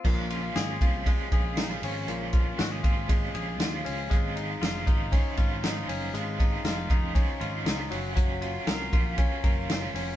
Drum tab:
CC |x-------|--------|--------|--------|
RD |-xxxxxxx|xxxxxxxx|xxxxxxxx|xxxxxxxx|
HH |-------o|p------o|p------o|p------o|
SD |--o---o-|--o---o-|--o---o-|--o---o-|
BD |o--ooo--|-o-oo---|o--ooo--|-o-oo---|

CC |--------|
RD |xxxxxxxx|
HH |p------o|
SD |--o---o-|
BD |o--ooo--|